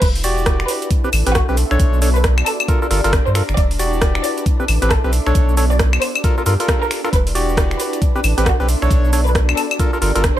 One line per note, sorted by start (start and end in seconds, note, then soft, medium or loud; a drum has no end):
0.01 0.65 E1 loud
0.01 7.12 D4 medium
0.01 1.18 E4 medium
0.01 0.19 B4 loud
0.01 kick loud
0.01 closed hi-hat medium
0.01 crash loud
0.01 cabasa soft
0.15 open hi-hat medium
0.15 cabasa soft
0.24 0.90 F#4 medium
0.24 0.90 G4 medium
0.24 0.90 D5 medium
0.24 open hi-hat loud
0.24 cabasa medium
0.38 cabasa soft
0.43 0.91 B4 medium
0.43 kick loud
0.43 cross-stick loud
0.43 closed hi-hat medium
0.43 cabasa soft
0.60 finger snap medium
0.60 cabasa soft
0.68 0.81 B4 medium
0.68 open hi-hat loud
0.68 cabasa medium
0.82 closed hi-hat soft
0.82 cabasa soft
0.91 1.95 A4 medium
0.91 kick loud
0.91 closed hi-hat medium
0.91 cabasa soft
1.04 1.09 C4 medium
1.04 1.09 G4 medium
1.04 1.09 B4 medium
1.04 cabasa soft
1.13 1.23 A1 loud
1.13 open hi-hat loud
1.13 cabasa medium
1.13 claves medium
1.22 1.95 E5 medium
1.22 1.57 C6 medium
1.27 1.42 A1 loud
1.27 1.34 C4 medium
1.27 1.34 G4 medium
1.27 1.34 B4 loud
1.27 closed hi-hat medium
1.27 cabasa soft
1.35 1.52 F#4 loud
1.35 kick loud
1.35 cross-stick loud
1.35 closed hi-hat medium
1.35 cabasa soft
1.49 1.64 B1 medium
1.49 1.56 C4 medium
1.49 1.56 G4 medium
1.49 1.56 B4 loud
1.49 cabasa soft
1.57 2.46 B3 medium
1.57 open hi-hat loud
1.57 cabasa medium
1.71 1.77 B1 loud
1.71 2.00 D4 medium
1.71 2.00 A4 medium
1.71 2.00 C#5 loud
1.71 finger snap soft
1.71 cabasa soft
1.78 2.43 B1 loud
1.78 2.46 F#4 medium
1.78 kick loud
1.78 closed hi-hat medium
1.78 cabasa soft
1.93 cabasa soft
1.99 2.10 D4 medium
1.99 2.10 A4 medium
1.99 2.10 C#5 medium
1.99 3.95 D5 medium
1.99 open hi-hat loud
1.99 cabasa medium
2.15 2.29 B4 medium
2.15 cabasa soft
2.24 kick loud
2.24 cross-stick loud
2.24 closed hi-hat medium
2.24 cabasa soft
2.38 finger snap medium
2.38 cabasa soft
2.38 claves medium
2.46 3.95 G4 medium
2.46 2.59 A4 medium
2.46 open hi-hat loud
2.46 cabasa medium
2.46 claves medium
2.60 closed hi-hat soft
2.60 cabasa soft
2.60 claves medium
2.68 2.80 F4 medium
2.68 2.80 A4 medium
2.68 2.80 A#4 medium
2.68 kick loud
2.68 closed hi-hat medium
2.68 cabasa soft
2.82 2.87 F4 medium
2.82 2.87 A4 medium
2.82 2.87 A#4 medium
2.82 cabasa soft
2.91 3.01 G1 loud
2.91 3.01 F4 medium
2.91 3.01 A4 medium
2.91 3.01 A#4 medium
2.91 open hi-hat loud
2.91 cabasa medium
2.97 3.57 A#5 medium
3.04 3.20 G1 medium
3.04 3.12 F4 loud
3.04 3.12 A4 medium
3.04 3.12 A#4 loud
3.04 closed hi-hat medium
3.04 cabasa soft
3.13 kick loud
3.13 cross-stick loud
3.13 closed hi-hat medium
3.13 cabasa soft
3.26 3.42 G2 medium
3.26 3.40 C5 medium
3.26 cabasa soft
3.35 3.43 F4 loud
3.35 3.43 A4 medium
3.35 3.43 A#4 loud
3.35 finger snap medium
3.35 open hi-hat loud
3.35 cabasa medium
3.49 3.55 G1 loud
3.49 finger snap soft
3.49 cabasa soft
3.57 4.21 E1 loud
3.57 4.74 E4 medium
3.57 3.74 D5 loud
3.57 kick loud
3.57 closed hi-hat medium
3.57 cabasa soft
3.71 open hi-hat medium
3.71 cabasa soft
3.79 4.45 F#4 medium
3.79 4.45 G4 medium
3.79 4.45 D5 medium
3.79 open hi-hat loud
3.79 cabasa medium
3.84 4.46 B4 medium
3.93 cabasa soft
4.02 kick loud
4.02 cross-stick loud
4.02 closed hi-hat medium
4.02 cabasa soft
4.15 finger snap medium
4.15 cabasa soft
4.24 4.36 D5 medium
4.24 open hi-hat loud
4.24 cabasa medium
4.38 closed hi-hat soft
4.38 cabasa soft
4.46 5.50 A4 medium
4.46 kick loud
4.46 closed hi-hat medium
4.46 cabasa soft
4.60 4.65 C4 medium
4.60 4.65 G4 medium
4.60 4.65 B4 medium
4.60 cabasa soft
4.68 4.79 A1 loud
4.68 open hi-hat loud
4.68 cabasa medium
4.68 claves medium
4.76 5.51 E5 medium
4.76 5.13 C6 medium
4.82 4.98 A1 medium
4.82 4.90 C4 medium
4.82 4.90 G4 medium
4.82 4.90 B4 loud
4.82 closed hi-hat medium
4.82 cabasa soft
4.90 5.07 A4 medium
4.90 kick loud
4.90 cross-stick loud
4.90 closed hi-hat medium
4.90 cabasa soft
5.04 5.20 B1 medium
5.04 5.12 C4 medium
5.04 5.12 G4 medium
5.04 5.12 B4 loud
5.04 cabasa soft
5.13 6.02 B3 medium
5.13 open hi-hat loud
5.13 cabasa medium
5.27 5.33 B1 loud
5.27 5.55 D4 medium
5.27 5.55 A4 medium
5.27 5.55 C#5 loud
5.27 finger snap soft
5.27 cabasa soft
5.35 5.98 B1 loud
5.35 kick loud
5.35 closed hi-hat medium
5.35 cabasa soft
5.49 cabasa soft
5.54 5.65 D4 medium
5.54 6.02 F#4 medium
5.54 5.65 A4 medium
5.54 5.65 C#5 loud
5.54 7.51 D5 medium
5.54 open hi-hat loud
5.54 cabasa medium
5.71 5.84 D5 medium
5.71 cabasa soft
5.79 kick loud
5.79 cross-stick loud
5.79 closed hi-hat medium
5.79 cabasa soft
5.93 finger snap medium
5.93 cabasa soft
5.93 claves medium
6.02 7.51 G4 medium
6.02 6.14 C5 medium
6.02 open hi-hat loud
6.02 cabasa medium
6.02 claves medium
6.15 closed hi-hat soft
6.15 cabasa soft
6.15 claves medium
6.24 6.36 F4 medium
6.24 6.36 A4 medium
6.24 6.36 A#4 medium
6.24 kick loud
6.24 closed hi-hat medium
6.24 cabasa soft
6.38 6.43 F4 medium
6.38 6.43 A4 medium
6.38 6.43 A#4 medium
6.38 cabasa soft
6.46 6.57 G2 loud
6.46 6.54 F4 medium
6.46 6.54 A4 medium
6.46 6.54 A#4 loud
6.46 open hi-hat loud
6.46 cabasa medium
6.60 7.01 F4 medium
6.60 7.01 A4 medium
6.60 7.01 A#4 medium
6.60 closed hi-hat medium
6.60 cabasa soft
6.68 kick loud
6.68 cross-stick loud
6.68 closed hi-hat medium
6.68 cabasa soft
6.82 6.96 A#4 loud
6.82 cabasa soft
6.91 finger snap medium
6.91 open hi-hat medium
6.91 cabasa medium
7.04 7.09 F4 medium
7.04 7.09 A4 medium
7.04 7.09 A#4 loud
7.04 finger snap soft
7.04 cabasa soft
7.13 7.76 E1 loud
7.13 10.40 D4 medium
7.13 8.30 E4 medium
7.13 7.30 B4 medium
7.13 kick loud
7.13 closed hi-hat medium
7.13 cabasa soft
7.27 open hi-hat medium
7.27 cabasa soft
7.35 8.01 F#4 medium
7.35 8.01 G4 medium
7.35 8.02 B4 medium
7.35 8.01 D5 medium
7.35 open hi-hat loud
7.35 cabasa medium
7.49 cabasa soft
7.57 kick loud
7.57 cross-stick loud
7.57 closed hi-hat medium
7.57 cabasa soft
7.71 finger snap medium
7.71 cabasa soft
7.79 7.92 B4 medium
7.79 open hi-hat loud
7.79 cabasa medium
7.93 closed hi-hat soft
7.93 cabasa soft
8.02 9.06 A4 medium
8.02 kick loud
8.02 closed hi-hat medium
8.02 cabasa soft
8.16 8.20 C4 medium
8.16 8.20 G4 medium
8.16 8.20 B4 medium
8.16 cabasa soft
8.24 8.34 A1 loud
8.24 open hi-hat loud
8.24 cabasa medium
8.24 claves medium
8.34 9.06 E5 medium
8.34 8.68 C6 medium
8.38 8.53 A1 medium
8.38 8.46 C4 medium
8.38 8.46 G4 medium
8.38 8.46 B4 loud
8.38 closed hi-hat medium
8.38 cabasa soft
8.46 8.63 F#4 medium
8.46 kick loud
8.46 cross-stick loud
8.46 closed hi-hat medium
8.46 cabasa soft
8.60 8.76 B1 medium
8.60 8.67 C4 medium
8.60 8.67 G4 medium
8.60 8.67 B4 loud
8.60 cabasa soft
8.68 9.57 B3 medium
8.68 open hi-hat medium
8.68 cabasa medium
8.82 8.89 B1 loud
8.82 9.11 D4 medium
8.82 9.11 A4 medium
8.82 9.11 C#5 loud
8.82 finger snap soft
8.82 cabasa soft
8.91 9.54 B1 loud
8.91 kick loud
8.91 closed hi-hat medium
8.91 cabasa soft
9.03 9.57 F#4 medium
9.03 cabasa soft
9.09 9.21 D4 medium
9.09 9.21 A4 medium
9.09 9.21 C#5 medium
9.09 10.40 D5 medium
9.09 open hi-hat loud
9.09 cabasa medium
9.27 9.40 B4 medium
9.27 cabasa soft
9.35 kick loud
9.35 cross-stick loud
9.35 closed hi-hat medium
9.35 cabasa soft
9.49 finger snap medium
9.49 cabasa soft
9.49 claves medium
9.57 10.40 G4 medium
9.57 9.70 A4 medium
9.57 open hi-hat loud
9.57 cabasa medium
9.57 claves medium
9.71 closed hi-hat soft
9.71 cabasa soft
9.71 claves medium
9.79 9.91 F4 medium
9.79 9.91 A4 medium
9.79 9.91 A#4 medium
9.79 kick loud
9.79 closed hi-hat medium
9.79 cabasa soft
9.93 9.98 F4 medium
9.93 9.98 A4 medium
9.93 9.98 A#4 loud
9.93 cabasa soft
10.02 10.12 G1 loud
10.02 10.12 F4 medium
10.02 10.12 A4 medium
10.02 10.12 A#4 medium
10.02 open hi-hat loud
10.02 cabasa medium
10.08 10.40 A#5 medium
10.15 10.31 G1 medium
10.15 10.23 F4 loud
10.15 10.23 A4 medium
10.15 10.23 A#4 loud
10.15 closed hi-hat medium
10.15 cabasa soft
10.24 kick loud
10.24 cross-stick loud
10.24 closed hi-hat medium
10.24 cabasa soft